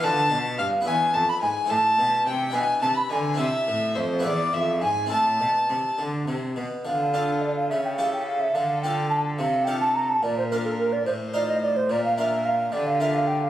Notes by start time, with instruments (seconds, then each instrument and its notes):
0.00 harpsichord D3 B3 F4 B4, flute A5, violin A5
0.04 cello D3
0.30 harpsichord B2, cello B2
0.58 harpsichord G2, cello G2, flute F5, violin F5
0.81 harpsichord B3 E4 B4
0.86 harpsichord E2, cello E2, violin G#5, flute G#5
1.14 harpsichord F2, cello F2, violin A5, flute A5
1.29 flute B5, violin B5
1.42 harpsichord G#2, cello G#2, violin G#5, flute G#5
1.65 harpsichord A3 E4 C5
1.70 harpsichord A2, cello A2, flute A5, violin A5
1.98 cello B2, harpsichord B2
2.27 harpsichord C3, cello C3, violin G5, flute G5
2.50 cello B2, harpsichord D4 E4 B4, flute G#5
2.55 harpsichord B2, violin G#5
2.82 harpsichord C3, cello C3, flute A5, violin A5
2.95 violin B5, flute B5
3.09 cello D3, harpsichord D3, violin G#5, flute G#5
3.34 harpsichord C4 E4 A4, violin E5
3.39 harpsichord C3, cello C3, flute E5
3.67 harpsichord A2, cello A2
3.95 harpsichord F2, cello F2, violin C5, flute C5
4.19 harpsichord B3 E4 G#4
4.24 harpsichord E2, cello E2, violin D5, flute D5
4.53 harpsichord F2, cello F2, violin E5, flute E5
4.82 harpsichord G#2, cello G#2, violin G#5, flute G#5
5.06 harpsichord C4 E4 A4
5.11 harpsichord A2, cello A2, violin A5, flute A5
5.40 harpsichord B2, cello B2
5.70 harpsichord C3, cello C3
5.98 harpsichord D3, cello D3
6.28 harpsichord C3, cello C3
6.56 harpsichord B2, cello B2
6.84 harpsichord D3, cello D3, violin F4, flute F5
7.14 harpsichord D4 F4 A4
7.42 flute D5
7.56 flute F5
7.69 cello C#3, harpsichord C#3, violin A4, flute E5
7.85 flute G5
7.97 harpsichord E4 G4 A4, flute F5
8.13 flute G5
8.26 flute F5
8.40 flute E5
8.54 harpsichord D3, cello D3, flute F5
8.82 harpsichord D4 F4 A4, flute G5
9.10 flute A5
9.38 harpsichord C3, cello C3, violin A4, flute F5
9.65 harpsichord D4 F4 A4, flute G5
9.80 flute A5
9.94 flute A#5
10.09 flute A5
10.23 harpsichord A#2, cello A#2, violin A#4, flute D5
10.38 flute C5
10.51 harpsichord D4 F4 A#4, flute A#4
10.65 flute A4
10.79 flute A#4
10.93 flute D5
11.06 cello A2, harpsichord A2, violin C5, flute C5
11.34 harpsichord D#4 F4 C5, flute D5
11.48 flute D#5
11.62 flute D5
11.76 flute C5
11.89 harpsichord A#2, cello A#2, violin A#4, flute D5
12.05 flute F5
12.18 harpsichord D4 F4 A#4, flute E5
12.45 flute F5
12.72 harpsichord D3, cello D3, violin G4, flute D5
12.87 flute F5
13.00 harpsichord D4 F4 A#4, flute E5
13.14 flute F5
13.27 flute G5
13.42 flute F5